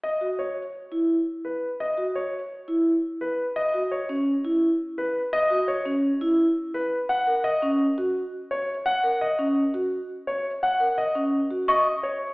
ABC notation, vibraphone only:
X:1
M:5/4
L:1/8
Q:1/4=170
K:C#dor
V:1 name="Vibraphone"
z F z3 E z4 | z F z3 E z4 | z F z C z E z4 | z F z C z E z4 |
z A z C z F z4 | z A z C z F z4 | z A z C z F z4 |]